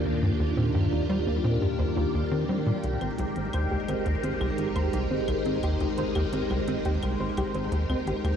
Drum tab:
HH |----------------|xxxxx-xxx-xxx-xx|xxxxx-xxx-xxx-xx|
CL |----------------|-x--x-x--x-x--x-|x--x-x--x-x--x-x|